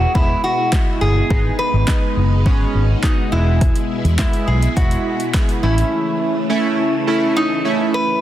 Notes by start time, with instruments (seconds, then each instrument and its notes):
Already playing: string machine B2 G#3 E4, resonator guitar played with a steel bar F#4
0.15 fingered electric bass E1, synth keys G#3 B3 E4, resonator guitar played with a steel bar E4, kick
0.44 resonator guitar played with a steel bar F#4
0.72 synth keys G#3 B3 E4, kick, snare, clap
1.01 fingered electric bass G1, resonator guitar played with a steel bar G#4
1.30 fingered electric bass G#1, string machine B2 D#4, synth keys G#3 B3 D#4, kick
1.59 resonator guitar played with a steel bar B4
1.74 fingered electric bass G#1
1.87 synth keys G#3 B3 D#4, kick, snare, clap
2.17 fingered electric bass F#1
2.46 fingered electric bass G#1, synth keys G#3 B3 C#4, kick
2.75 fingered electric bass G#1
3.03 synth keys G#3 B3 F#4, resonator guitar played with a steel bar D#4, kick, snare, clap
3.32 fingered electric bass E1, synth keys G#3 B3 E4, resonator guitar played with a steel bar E4, string machine E4
3.61 kick, closed hi-hat
3.76 closed hi-hat
4.05 fingered electric bass E2, closed hi-hat
4.18 synth keys G#3 B3 E4, resonator guitar played with a steel bar E4, kick, snare, clap, closed hi-hat
4.33 closed hi-hat
4.48 fingered electric bass B1, resonator guitar played with a steel bar G#4
4.63 closed hi-hat
4.76 fingered electric bass E1, synth keys G#3 B3 E4, resonator guitar played with a steel bar F#4, kick, closed hi-hat
4.91 closed hi-hat
5.20 closed hi-hat
5.34 synth keys G#3 B3 E4, kick, snare, clap, closed hi-hat
5.49 closed hi-hat
5.63 fingered electric bass A1, string machine C#3 E3 A3, synth keys A3 C#4 E4, resonator guitar played with a steel bar E4
5.78 closed hi-hat
6.50 synth keys A3 C#4 E4
7.07 synth keys A3 C#4 E4
7.36 resonator guitar played with a steel bar D#4
7.65 synth keys A3 C#4 E4
7.94 resonator guitar played with a steel bar B4